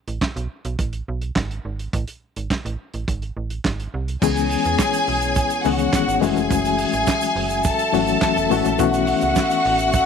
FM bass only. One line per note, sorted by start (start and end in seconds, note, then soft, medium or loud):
0.08 0.19 A1 medium
0.36 0.48 B1 medium
0.65 0.76 B1 medium
0.79 1.02 A1 medium
1.08 1.31 B1 medium
1.36 1.59 G#1 loud
1.65 1.88 G#1 medium
1.93 2.05 A1 loud
2.37 2.48 G#1 medium
2.65 2.77 A1 medium
2.94 3.05 A1 medium
3.08 3.31 G#1 medium
3.37 3.60 A1 medium
3.65 3.88 G#1 medium
3.94 4.17 C2 loud
4.22 4.57 C#2 loud
4.65 4.77 E2 medium
5.08 5.42 B1 medium
5.65 5.88 C#2 loud
6.08 6.19 G#1 medium
6.22 6.34 F#1 loud
6.36 6.48 F1 loud
6.51 6.85 F#1 loud
6.93 7.05 A1 medium
7.36 7.70 F#1 loud
7.93 8.16 G#1 loud
8.36 8.48 E1 medium
8.51 8.62 A1 loud
8.65 8.77 A#1 loud
8.79 9.14 B1 loud
9.23 9.34 C#2 medium
9.66 10.00 A1 loud